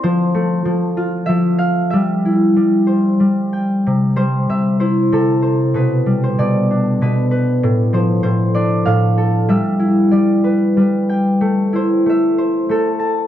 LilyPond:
<<
  \new Staff \with { instrumentName = "Harp" } { \time 3/4 \key c \major \tempo 4 = 95 c''2 e''8 f''8 | e''2~ e''8 r8 | r8 c''8 e''8 c''8 a'4 | b'8. c''16 d''4 b'8. r16 |
r8 c''8 c''8 d''8 f''4 | e''4 d''4 b'8. r16 | r8 c''8 e''8 r8 a'4 | }
  \new Staff \with { instrumentName = "Harp" } { \clef bass \time 3/4 \key c \major f8 a8 f8 f'8 f4 | g8 e'8 g8 c''8 g8 g''8 | c8 g8 c8 e'8 c8 c''8 | b,8 g8 b,8 d'8 b,8 b'8 |
a,8 f8 a,8 d'8 a,8 a'8 | g8 e'8 g8 b'8 g8 g''8 | a8 e'8 a8 c''8 a8 a''8 | }
>>